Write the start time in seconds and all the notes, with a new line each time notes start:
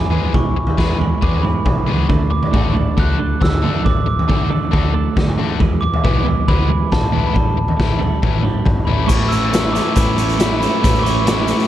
Already playing: E2 G#5
0.01 mid tom
0.10 E2 E3 G#3 B3 G#4, floor tom
0.33 B1 E2 E3 G#3 C#6, muted distorted electric guitar stroke, kick, floor tom
0.56 E2 E3, muted distorted electric guitar stroke
0.67 floor tom
0.77 E2 E3 G#3 B3 G#4 B5, kick, snare
0.90 floor tom
0.99 E2 E3 G#3, muted distorted electric guitar stroke, floor tom
1.21 E2 E3 G#3 B3 G#4 D6, kick, floor tom
1.33 floor tom
1.42 E2 E3 G#3 B5, muted distorted electric guitar stroke, mid tom
1.65 B1 E2 E3, muted distorted electric guitar stroke, kick, floor tom, mid tom
1.76 floor tom
1.87 C#2 E2 E3 G#3 B3 G#4, floor tom
2.08 D2 D3 A3 D4, muted distorted electric guitar stroke, kick, floor tom
2.30 D3 A3 D6, muted distorted electric guitar stroke
2.43 floor tom
2.51 A1 D3 A3 D4 F#4, kick, mid tom
2.66 floor tom
2.73 D3 A3 D4, muted distorted electric guitar stroke, floor tom
2.97 C#2 D3 A3 D4 F#4 F#6, kick, floor tom
3.18 D3 A3 D4, muted distorted electric guitar stroke
3.41 D2 D3 E6, muted distorted electric guitar stroke, kick, snare, floor tom
3.54 mid tom
3.62 D3 A3 D4 F#4, floor tom
3.83 A1 D3 A3 D4 D6, muted distorted electric guitar stroke, kick, floor tom
4.06 D3 A3 D6, muted distorted electric guitar stroke
4.19 floor tom
4.28 D2 D3 A3 D4 F#4, kick, mid tom
4.41 floor tom
4.49 D3 A3 D4, muted distorted electric guitar stroke, floor tom
4.71 D2 D3 A3 D4 F#4, kick, floor tom
4.93 D3 A3 D4, muted distorted electric guitar stroke
5.16 D2 D3, muted distorted electric guitar stroke, kick, snare, floor tom
5.28 mid tom
5.38 D3 A3 D4 F#4, floor tom
5.60 E2 E3 G#3, muted distorted electric guitar stroke, kick, floor tom
5.81 E2 E3 D6, muted distorted electric guitar stroke
5.94 floor tom
6.03 B1 E2 E3 G#3 B3 E4, kick, mid tom
6.15 floor tom
6.24 E2 E3 G#3, floor tom
6.28 muted distorted electric guitar stroke
6.46 D2 E2 E3 G#3 B5, kick, floor tom
6.50 B3 E4
6.68 E2 E3 G#3, muted distorted electric guitar stroke
6.92 A#1 A5, muted distorted electric guitar stroke, kick, snare, floor tom
7.03 mid tom
7.12 E2 E3 G#3 B3 E4, floor tom
7.27 B5
7.33 A1 A2 D3 G3, muted distorted electric guitar stroke, kick, floor tom
7.37 A5
7.56 A2 D3, muted distorted electric guitar stroke
7.68 floor tom
7.77 A1 A2 D3 E3 A3 C#4, kick, snare
7.81 E4
7.90 floor tom
7.99 A2 D3 G3, muted distorted electric guitar stroke, floor tom
8.21 A1 A2 D3 E3 A3 C#4 E4, kick, floor tom
8.33 floor tom
8.43 A2 D3 G3, muted distorted electric guitar stroke, mid tom
8.65 G1 A2 D3, muted distorted electric guitar stroke, kick, floor tom, mid tom
8.76 floor tom
8.85 A1 A2 D3 E3 A3 C#4 E4 B5, floor tom
9.04 A2 A3 C#6 D6
9.09 A1 A2 E3 A3 B3 C#4 E4, kick, crash, shaker
9.29 A2 E3 A3 B3 C#4 E4 E6, closed hi-hat, shaker
9.33 E4
9.50 A2 E3 A3 B3 C#4 E4, closed hi-hat, shaker
9.54 C#4 E4, snare
9.72 A2 E3 A3 B3 C#4 E4 D6, snare, closed hi-hat, shaker
9.77 E4
9.95 A1 A2 E3 A3 B3 C#4 E4 B5, kick, closed hi-hat, shaker
10.17 A2 E3 A3 B3 C#4 E4, closed hi-hat, shaker
10.29 closed hi-hat
10.38 A2 E3 A3 B3 C#4 E4, snare, closed hi-hat, shaker
10.59 A2 E3 A3 B3 C#4 E4 B5, closed hi-hat, shaker
10.81 A1 A2 E3 A3 B3 C#4 E4, kick, shaker
10.85 closed hi-hat
10.95 closed hi-hat
10.99 C#6 D6
11.04 A2 E3 A3 B3 C#4 E4, closed hi-hat, shaker
11.25 A2 E3 A3 B3 C#4 E4, snare, closed hi-hat, shaker
11.46 A2 E3 A3 B3 C#4 E4, closed hi-hat, shaker
11.60 closed hi-hat